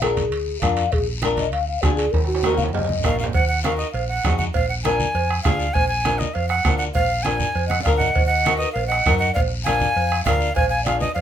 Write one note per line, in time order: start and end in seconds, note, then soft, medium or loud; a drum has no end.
0.00 0.32 A#1 medium
0.00 0.23 D4 medium
0.00 0.23 F4 medium
0.00 0.60 G#4 medium
0.00 0.23 A#4 medium
0.00 bombo rim medium
0.00 high conga medium
0.00 high timbale medium
0.00 short guiro medium
0.17 high conga medium
0.17 low conga medium
0.17 high timbale medium
0.17 short guiro medium
0.32 0.56 D2 loud
0.32 high timbale medium
0.32 long guiro medium
0.48 high conga soft
0.61 0.87 F2 loud
0.61 0.83 D4 medium
0.61 0.83 F4 medium
0.61 0.84 A#4 medium
0.61 0.94 F5 medium
0.61 bombo low medium
0.61 bombo rim medium
0.61 high conga medium
0.61 low conga medium
0.61 high timbale medium
0.61 short guiro medium
0.77 high timbale medium
0.77 short guiro medium
0.92 1.52 A#1 medium
0.92 1.08 G#4 medium
0.92 bombo low medium
0.92 high conga soft
0.92 high timbale medium
0.92 long guiro medium
1.22 1.44 D4 medium
1.22 1.45 F4 medium
1.22 1.45 A#4 medium
1.22 bombo rim medium
1.22 high conga medium
1.22 high timbale medium
1.22 short guiro medium
1.37 1.52 D#5 medium
1.37 high conga medium
1.37 high timbale medium
1.37 short guiro medium
1.52 1.77 D2 medium
1.52 1.67 F5 medium
1.52 high timbale medium
1.52 long guiro medium
1.67 1.84 F5 medium
1.67 high conga soft
1.82 2.07 D2 medium
1.82 2.05 D4 medium
1.82 2.05 F4 medium
1.82 1.96 F#4 medium
1.82 2.05 G#4 medium
1.82 bombo low medium
1.82 bombo rim medium
1.82 high conga medium
1.82 high timbale medium
1.82 low timbale medium
1.82 short guiro medium
1.96 2.13 G#4 medium
1.96 high timbale medium
1.96 short guiro medium
2.11 2.73 D#2 loud
2.11 2.26 A#4 loud
2.11 bombo low medium
2.11 high conga soft
2.11 high timbale medium
2.11 long guiro medium
2.24 2.56 F#4 loud
2.24 high timbale medium
2.35 high timbale medium
2.43 2.65 D#4 medium
2.43 2.65 F#4 medium
2.43 2.66 A#4 medium
2.43 bombo rim medium
2.43 high conga medium
2.43 low timbale medium
2.43 short guiro medium
2.54 2.63 F5 medium
2.54 low timbale medium
2.54 short guiro medium
2.58 high conga medium
2.64 high timbale medium
2.69 3.15 D#5 medium
2.69 high conga medium
2.73 2.97 F#2 medium
2.73 low timbale loud
2.73 long guiro medium
2.79 high conga medium
2.84 low timbale medium
2.89 high conga medium
2.99 low conga medium
2.99 short guiro medium
3.04 3.28 A#1 medium
3.04 3.25 D#4 medium
3.04 3.25 F#4 medium
3.04 3.25 A#4 medium
3.04 3.18 F5 medium
3.04 bombo low medium
3.04 bombo rim medium
3.04 low timbale medium
3.09 low conga medium
3.19 3.26 F5 medium
3.19 low conga medium
3.19 short guiro medium
3.24 low timbale medium
3.29 low conga medium
3.33 3.83 D#2 medium
3.33 3.48 F#5 medium
3.33 bombo low medium
3.33 cowbell loud
3.33 high conga soft
3.33 long guiro medium
3.48 3.62 F#5 medium
3.63 3.85 D#4 medium
3.63 3.86 F#4 medium
3.63 3.86 A#4 medium
3.63 3.77 F5 medium
3.63 bombo rim medium
3.63 cowbell medium
3.63 high conga medium
3.63 short guiro medium
3.77 3.91 D#5 medium
3.77 short guiro medium
3.92 4.18 A#1 medium
3.92 4.07 F5 medium
3.92 cowbell medium
3.92 long guiro medium
4.08 4.36 F#5 loud
4.08 high conga soft
4.24 4.48 F2 medium
4.24 4.46 D#4 medium
4.24 4.46 F#4 medium
4.24 4.46 G#4 medium
4.24 bombo low medium
4.24 bombo rim medium
4.24 cowbell medium
4.24 high conga medium
4.24 low timbale medium
4.24 short guiro medium
4.38 4.44 F#5 medium
4.38 high conga medium
4.38 short guiro medium
4.54 5.03 A#1 medium
4.54 4.68 F5 loud
4.54 bombo low medium
4.54 cowbell loud
4.54 high conga soft
4.54 long guiro medium
4.69 4.75 F#5 medium
4.83 5.06 D4 medium
4.83 5.06 F4 medium
4.83 5.06 A#4 medium
4.83 5.40 G#5 medium
4.83 bombo rim medium
4.83 cowbell medium
4.83 high conga loud
4.83 short guiro medium
5.00 high conga medium
5.00 short guiro medium
5.15 5.39 F2 medium
5.15 cowbell medium
5.15 long guiro medium
5.30 bombo rim medium
5.30 high conga soft
5.43 5.69 D2 medium
5.43 5.66 D4 medium
5.43 5.66 F4 medium
5.43 5.66 G#4 medium
5.43 5.75 F5 medium
5.43 bombo low medium
5.43 bombo rim medium
5.43 cowbell medium
5.43 high conga medium
5.43 low conga medium
5.43 low timbale medium
5.43 short guiro medium
5.59 short guiro medium
5.74 6.23 A#1 loud
5.74 5.87 G#5 loud
5.74 bombo low medium
5.74 cowbell medium
5.74 high conga soft
5.74 long guiro medium
5.88 6.20 G#5 loud
6.04 6.26 D4 medium
6.04 6.26 F4 medium
6.04 6.27 A#4 medium
6.04 bombo rim medium
6.04 cowbell medium
6.04 high conga medium
6.04 short guiro medium
6.19 6.35 D#5 medium
6.19 high conga medium
6.19 short guiro medium
6.34 6.59 F2 medium
6.34 6.48 F5 medium
6.34 cowbell medium
6.34 long guiro medium
6.49 6.77 F#5 loud
6.49 bombo rim medium
6.49 high conga soft
6.65 6.89 D2 medium
6.65 6.87 D4 medium
6.65 6.87 F4 medium
6.65 6.87 A#4 medium
6.65 bombo low medium
6.65 bombo rim medium
6.65 cowbell medium
6.65 high conga medium
6.65 low timbale medium
6.65 short guiro medium
6.78 6.84 F#5 medium
6.78 short guiro medium
6.94 7.43 A#1 loud
6.94 7.24 F5 loud
6.94 bombo low medium
6.94 cowbell loud
6.94 high conga soft
6.94 long guiro medium
7.23 7.46 D4 medium
7.23 7.46 F4 medium
7.23 7.47 A#4 medium
7.23 7.68 G#5 medium
7.23 bombo rim medium
7.23 cowbell medium
7.23 high conga medium
7.23 short guiro medium
7.40 high conga medium
7.40 low conga medium
7.40 short guiro medium
7.55 7.79 F2 medium
7.55 cowbell medium
7.55 long guiro medium
7.66 7.82 D#5 medium
7.66 7.82 F#5 medium
7.66 high conga medium
7.71 bombo rim medium
7.80 7.97 D5 medium
7.80 7.96 F5 medium
7.80 low conga medium
7.85 8.10 D2 medium
7.85 8.07 D4 medium
7.85 8.07 F4 medium
7.85 8.07 A#4 medium
7.85 bombo low medium
7.85 bombo rim medium
7.85 cowbell medium
7.85 short guiro medium
7.97 8.27 D#5 medium
7.97 8.26 F#5 medium
7.97 low conga medium
7.97 short guiro medium
8.15 8.64 D#2 medium
8.15 bombo low medium
8.15 cowbell loud
8.15 high conga soft
8.15 long guiro medium
8.26 8.57 D#5 medium
8.26 8.56 F#5 medium
8.45 8.67 D#4 medium
8.45 8.67 F#4 medium
8.45 8.67 A#4 medium
8.45 bombo rim medium
8.45 cowbell medium
8.45 high conga loud
8.45 short guiro medium
8.58 8.72 B4 medium
8.58 8.72 D#5 medium
8.58 short guiro medium
8.72 9.00 A#1 loud
8.72 8.87 A#4 medium
8.72 8.87 F5 medium
8.72 cowbell medium
8.72 long guiro medium
8.87 9.17 D#5 medium
8.87 9.17 F#5 loud
8.91 bombo rim medium
8.91 high conga soft
9.06 9.30 F#2 loud
9.06 9.27 D#4 medium
9.06 9.27 F#4 medium
9.06 9.27 A#4 medium
9.06 bombo low medium
9.06 bombo rim medium
9.06 cowbell medium
9.06 high conga medium
9.06 short guiro medium
9.19 9.33 D#5 medium
9.19 9.34 F#5 medium
9.19 short guiro medium
9.33 9.85 A#1 loud
9.33 9.39 D5 medium
9.33 9.40 F5 loud
9.33 bombo low medium
9.33 cowbell loud
9.33 high conga soft
9.33 long guiro medium
9.64 9.87 D4 medium
9.64 9.88 F4 medium
9.64 9.88 A#4 medium
9.64 10.21 F5 medium
9.64 10.21 G#5 loud
9.64 bombo rim medium
9.64 cowbell medium
9.64 high conga medium
9.64 short guiro medium
9.80 high conga medium
9.80 low conga medium
9.80 short guiro medium
9.96 10.20 F2 loud
9.96 cowbell medium
9.96 long guiro medium
10.11 bombo rim medium
10.11 high conga soft
10.25 10.50 D2 medium
10.25 10.48 D4 medium
10.25 10.48 F4 medium
10.25 10.48 A#4 medium
10.25 10.30 D#5 medium
10.25 10.53 F5 loud
10.25 bombo low medium
10.25 bombo rim medium
10.25 cowbell medium
10.25 high conga medium
10.25 low conga medium
10.25 short guiro medium
10.29 10.53 D5 medium
10.41 short guiro medium
10.54 11.04 A#1 loud
10.54 10.68 F5 medium
10.54 10.69 G#5 loud
10.54 bombo low medium
10.54 cowbell loud
10.54 high conga soft
10.54 long guiro medium
10.68 10.83 F5 medium
10.68 10.84 G#5 medium
10.83 11.07 D4 medium
10.83 11.07 F4 medium
10.83 11.08 G#4 medium
10.83 10.98 D5 medium
10.83 11.00 F5 loud
10.83 bombo rim medium
10.83 cowbell medium
10.83 high conga medium
10.83 short guiro medium
10.99 11.13 B4 medium
10.99 11.14 D#5 loud
10.99 high conga medium
10.99 short guiro medium
11.14 11.21 F2 medium
11.14 11.20 D5 medium
11.14 11.20 F5 medium
11.14 cowbell medium
11.14 long guiro medium